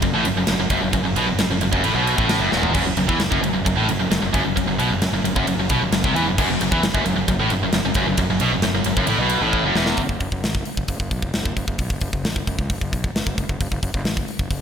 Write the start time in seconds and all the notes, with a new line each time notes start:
0.02 F#1 F#2, kick, ride
0.13 A1 A2
0.24 F#1 F#2, ride
0.36 F#1 F#2
0.47 F#1 F#2, snare, ride
0.59 F#1 F#2
0.70 F#1 F#2, kick, ride
0.82 F#1 F#2
0.93 F#1 F#2, kick, ride
1.04 F#1 F#2
1.16 B1 B2, ride
1.27 F#1 F#2
1.38 F#1 F#2, snare, ride
1.49 F#1 F#2
1.61 F#1 F#2, ride
1.73 F#1 F#2, kick
1.84 A1 A2, ride
1.95 B1 B2
2.07 ride
2.18 A1 A2, kick
2.29 snare, ride
2.40 F#1 F#2
2.52 E1 E2, snare
2.63 floor tom
2.74 F#1 F#2, kick, crash
2.86 F#1 F#2
2.97 F#1 F#2, ride
3.08 E2 E3, kick
3.19 F#1 F#2, snare, ride
3.31 F#1 F#2, kick
3.42 F#1 F#2, ride
3.54 F#1 F#2
3.66 F#1 F#2, kick, ride
3.77 A1 A2
3.88 F#1 F#2, ride
4.00 F#1 F#2
4.11 F#1 F#2, snare, ride
4.22 F#1 F#2
4.33 F#1 F#2, kick, ride
4.45 F#1 F#2
4.56 F#1 F#2, kick, ride
4.68 F#1 F#2
4.79 B1 B2, ride
4.90 F#1 F#2
5.02 F#1 F#2, snare, ride
5.13 F#1 F#2
5.24 F#1 F#2, ride
5.36 F#1 F#2, kick
5.47 F#1 F#2, ride
5.57 F#1 F#2
5.69 B1 B2, kick, ride
5.81 F#1 F#2
5.91 F#1 F#2, snare, ride
6.04 C2 C3, kick
6.14 E2 E3, ride
6.26 F#1 F#2
6.38 F#1 F#2, kick, crash
6.48 F#1 F#2
6.60 F#1 F#2, ride
6.72 E2 E3, kick
6.83 F#1 F#2, snare, ride
6.94 F#1 F#2, kick
7.05 F#1 F#2, ride
7.17 F#1 F#2
7.28 F#1 F#2, kick, ride
7.39 A1 A2
7.50 F#1 F#2, ride
7.62 F#1 F#2
7.73 F#1 F#2, snare, ride
7.84 F#1 F#2
7.94 F#1 F#2, kick, ride
8.07 F#1 F#2
8.17 F#1 F#2, kick, ride
8.29 F#1 F#2
8.40 B1 B2, ride
8.51 F#1 F#2
8.62 F#1 F#2, snare, ride
8.74 F#1 F#2
8.84 F#1 F#2, ride
8.96 F#1 F#2, kick
9.07 A1 A2, ride
9.18 B1 B2
9.30 ride
9.41 A1 A2
9.53 kick
9.63 F#1 F#2
9.75 E1 E2, snare
9.86 snare
9.97 F#1, kick, open hi-hat
10.09 F#1, kick
10.20 F#1, kick, open hi-hat
10.32 F#1, kick
10.44 A1, snare, open hi-hat
10.54 F#1, kick
10.65 muted fingered electric bass stroke, open hi-hat
10.77 F#1, kick
10.88 F#1, kick, open hi-hat
11.00 F#1, kick
11.11 B1, kick, open hi-hat
11.22 F#1, kick
11.34 F#1, snare, open hi-hat
11.45 F#1, kick
11.56 F#1, kick, open hi-hat
11.67 F#1, kick
11.78 B1, kick, open hi-hat
11.90 F#1, kick
12.01 F#1, kick, open hi-hat
12.12 F#1, kick
12.23 A1, snare, open hi-hat
12.36 F#1, kick
12.47 F#1, kick, open hi-hat
12.59 C#2, kick
12.70 F#1, kick, open hi-hat
12.81 F#1, kick
12.93 B1, kick, open hi-hat
13.04 F#1, kick
13.15 F#1, snare, open hi-hat
13.26 F#1, kick
13.38 F#1, kick, open hi-hat
13.49 F#1, kick
13.60 F#1, kick, open hi-hat
13.71 F#1, kick
13.83 F#1, kick, open hi-hat
13.94 F#1, kick
14.05 A1, snare, open hi-hat
14.17 F#1, kick
14.28 muted fingered electric bass stroke, open hi-hat
14.39 F#1, kick
14.50 F#1, kick, open hi-hat